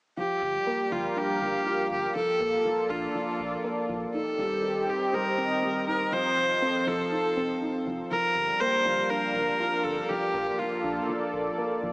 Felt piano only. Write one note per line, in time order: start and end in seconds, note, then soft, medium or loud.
0.17 0.41 F3 medium
0.67 0.90 A#3 medium
0.92 1.15 F3 medium
1.16 1.40 D4 medium
1.41 1.65 F3 medium
1.66 1.90 F4 medium
2.16 2.39 F3 medium
2.40 2.64 A#3 medium
2.65 2.89 F3 medium
2.90 3.14 D4 medium
3.15 3.38 F3 medium
3.64 3.88 A#3 medium
3.89 4.13 F3 medium
4.14 4.38 D#4 medium
4.39 4.63 G3 medium
4.63 4.87 G4 medium
5.13 5.37 G3 medium
5.38 5.62 C4 medium
5.63 5.86 G3 medium
5.87 6.11 D#4 medium
6.12 6.36 F3 medium
6.62 6.86 C4 medium
6.87 7.10 F3 medium
7.12 7.35 D#4 medium
7.37 7.60 C4 medium
7.62 7.85 D#4 medium
7.87 8.09 F3 medium
8.11 8.34 F3 medium
8.61 8.84 A#3 medium
8.86 9.09 F3 medium
9.10 9.34 D4 medium
9.35 9.59 F3 medium
9.60 9.83 F4 medium
10.10 10.33 F3 medium
10.34 10.58 A#3 medium
10.59 10.82 F3 medium
10.84 11.07 D4 medium
11.08 11.32 F3 medium
11.58 11.82 A#3 medium
11.83 11.93 F3 medium